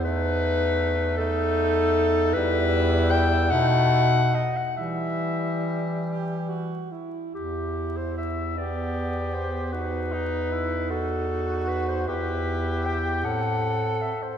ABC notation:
X:1
M:6/8
L:1/16
Q:3/8=51
K:Em
V:1 name="Clarinet"
B6 A6 | B4 g2 f4 ^d f | e6 z6 | G3 c e2 d4 c2 |
B6 A4 B c | B4 g2 f4 e c |]
V:2 name="Alto saxophone"
^D6 D6 | E6 ^D4 z2 | E6 G2 F2 E2 | E6 B,6 |
^D12 | E6 C4 z2 |]
V:3 name="Tenor saxophone"
A,6 A,6 | G,6 A,4 z2 | G,8- G,2 z2 | z6 G6 |
F2 ^D2 E2 F6 | G6 A6 |]
V:4 name="Bass clarinet" clef=bass
E,,12 | E,,6 B,,4 z2 | E,8- E,2 z2 | E,,12- |
E,,12 | E,,6 A,,4 z2 |]